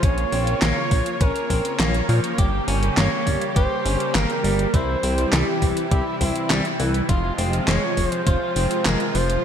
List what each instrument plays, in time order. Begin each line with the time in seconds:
Already playing: supersaw synth F4
0.03 analog synth bass A#1, supersaw synth C#3 A#3 C#5, clean electric guitar C#4, analog synth lead C#5, kick, closed hi-hat
0.18 closed hi-hat
0.32 analog synth bass A#1, clean electric guitar C4, open hi-hat
0.47 closed hi-hat
0.62 analog synth bass A#1, clean electric guitar A#3, analog synth lead C#5, snare, clap, closed hi-hat
0.91 analog synth bass A#1, clean electric guitar F3, kick, open hi-hat
1.06 closed hi-hat
1.21 analog synth bass A#1, clean electric guitar C#4, analog synth lead A#4, kick, closed hi-hat
1.36 closed hi-hat
1.50 analog synth bass A#1, clean electric guitar C4, kick, open hi-hat
1.65 closed hi-hat
1.79 analog synth bass A#1, clean electric guitar A#3, snare, clap, closed hi-hat
1.94 closed hi-hat
2.09 analog synth bass A#2, clean electric guitar F3, open hi-hat
2.24 closed hi-hat
2.38 analog synth bass G1, supersaw synth C#3 G3 G4, clean electric guitar G4, kick, closed hi-hat
2.68 analog synth bass G1, clean electric guitar C#4, open hi-hat
2.83 closed hi-hat
2.97 analog synth bass G1, clean electric guitar A#3, analog synth lead C#5, snare, clap, closed hi-hat
3.27 analog synth bass G1, clean electric guitar G3, kick, open hi-hat
3.41 closed hi-hat
3.56 analog synth bass G1, clean electric guitar G4, analog synth lead C5, kick, closed hi-hat
3.85 analog synth bass G1, clean electric guitar C#4, open hi-hat
4.00 closed hi-hat
4.15 analog synth bass G1, clean electric guitar A#3, analog synth lead A#4, snare, clap, closed hi-hat
4.30 closed hi-hat
4.44 analog synth bass G1, clean electric guitar G3, open hi-hat
4.59 closed hi-hat
4.74 analog synth bass C2, supersaw synth C3 E3 E4, clean electric guitar E4, analog synth lead C5, kick, closed hi-hat
5.03 analog synth bass C2, clean electric guitar C4, open hi-hat
5.18 closed hi-hat
5.33 analog synth bass C2, clean electric guitar G3, analog synth lead G4, snare, clap, closed hi-hat
5.62 analog synth bass C2, clean electric guitar E3, kick, open hi-hat
5.77 closed hi-hat
5.91 analog synth bass C2, clean electric guitar E4, analog synth lead G4, kick, closed hi-hat
6.21 analog synth bass C2, clean electric guitar C4, analog synth lead E4, kick, open hi-hat
6.36 closed hi-hat
6.50 analog synth bass C2, clean electric guitar G3, snare, clap, closed hi-hat
6.65 closed hi-hat
6.79 analog synth bass C2, clean electric guitar E3, open hi-hat
6.94 closed hi-hat
7.09 analog synth bass F1, supersaw synth C3 F3 G#3 F4, clean electric guitar F4, kick, closed hi-hat
7.38 analog synth bass F1, clean electric guitar C4, open hi-hat
7.53 closed hi-hat
7.68 analog synth bass F1, clean electric guitar G#3, analog synth lead C#5, snare, clap, closed hi-hat
7.97 analog synth bass F1, clean electric guitar F3, kick, open hi-hat
8.07 analog synth lead C5
8.12 closed hi-hat
8.27 analog synth bass F1, clean electric guitar F4, analog synth lead C5, kick, closed hi-hat
8.56 analog synth bass F1, clean electric guitar C4, open hi-hat
8.71 closed hi-hat
8.85 analog synth bass F1, clean electric guitar G#3, analog synth lead A#4, snare, clap, closed hi-hat
9.00 closed hi-hat
9.15 analog synth bass F1, clean electric guitar F3, analog synth lead C5, open hi-hat
9.30 closed hi-hat